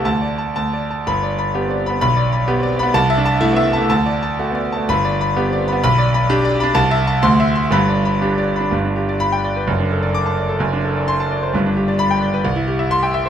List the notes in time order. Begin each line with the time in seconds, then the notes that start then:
0.05 D2 A5
0.22 D5
0.38 A5
0.56 D2 A5
0.73 D5
0.91 A5
1.07 G1 B5
1.23 D5
1.38 B5
1.55 B3 G4
1.67 C4 D5
1.86 B3 B5
2.01 B1 B5
2.17 D5
2.32 B5
2.48 B3 G4
2.59 C4 D5
2.79 B3 B5
2.94 C2 A5
3.10 E5
3.18 D4
3.26 A5
3.40 A3 E4
3.53 B3 E5
3.73 A3 A5
3.89 D2 A5
4.06 D5
4.23 A5
4.39 A3 F#4
4.51 B3 D5
4.72 A5
4.77 A3
4.89 G1 B5
5.05 D5
5.21 B5
5.37 B3 G4
5.49 C4 D5
5.68 B5
5.72 B3
5.84 B1 B5
5.98 D5
6.14 B5
6.29 D4 G4
6.45 D5
6.60 D4 B5
6.75 C2 A5
6.91 E5
7.07 A5
7.22 D2 C6
7.40 E5
7.55 C6
7.71 G1 G2 B5
7.89 D5
8.05 B5
8.22 D4 G4
8.38 D5
8.56 B5
8.60 D4
8.71 G1 G2
8.84 D4
8.96 G4
9.09 D5
9.20 B5
9.32 G5
9.44 D5
9.56 B4
9.67 F#1 F#2
9.80 D4
9.91 A4
10.03 D5
10.15 D6
10.26 A5
10.37 D5
10.49 A4
10.59 F#1 F#2
10.73 D4
10.85 A4
10.96 D5
11.08 C6
11.20 A5
11.32 D5
11.43 C5
11.54 G1 G2
11.66 D4
11.77 G4
11.88 D5
11.99 B5
12.11 G5
12.22 D5
12.34 B4
12.45 C2
12.56 E4
12.68 G4
12.79 E5
12.91 C6
13.03 G5
13.14 E5
13.26 C5